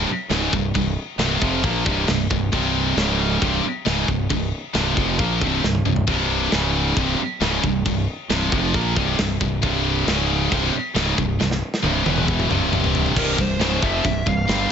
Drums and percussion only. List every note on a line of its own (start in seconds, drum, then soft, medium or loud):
0.31 snare loud
0.31 crash medium
0.53 kick medium
0.75 kick loud
0.75 crash medium
1.19 snare loud
1.19 crash medium
1.42 kick loud
1.64 kick loud
1.64 crash medium
1.86 kick loud
2.08 snare loud
2.08 crash medium
2.31 kick medium
2.53 kick loud
2.53 crash medium
2.97 snare loud
2.97 crash medium
3.42 kick loud
3.42 crash medium
3.86 snare loud
3.86 crash medium
4.08 kick loud
4.30 kick loud
4.30 crash medium
4.75 snare loud
4.75 crash medium
4.97 kick loud
5.19 kick loud
5.19 crash medium
5.41 kick loud
5.64 snare medium
5.75 high tom medium
5.86 mid tom medium
5.96 floor tom medium
6.07 kick loud
6.07 crash medium
6.52 snare loud
6.52 crash medium
6.97 kick loud
6.97 crash medium
7.41 snare loud
7.41 crash medium
7.64 kick loud
7.86 kick loud
7.86 crash medium
8.30 snare loud
8.30 crash medium
8.52 kick loud
8.74 kick loud
8.74 crash medium
8.96 kick loud
9.19 snare loud
9.19 crash medium
9.41 kick loud
9.63 kick loud
9.63 crash medium
10.08 snare loud
10.08 crash medium
10.52 kick loud
10.52 crash medium
10.96 snare loud
10.96 crash medium
11.18 kick medium
11.41 snare medium
11.51 snare medium
11.74 snare medium
11.84 high tom medium
12.06 high tom medium
12.17 mid tom medium
12.28 kick loud
12.40 mid tom medium
12.51 mid tom loud
12.73 mid tom loud
12.84 floor tom medium
12.95 floor tom loud
13.06 floor tom medium
13.16 kick loud
13.16 crash loud
13.16 china medium
13.38 kick loud
13.61 snare loud
13.61 china medium
13.83 kick loud
14.05 kick medium
14.05 china medium
14.27 kick medium
14.49 snare loud
14.49 china medium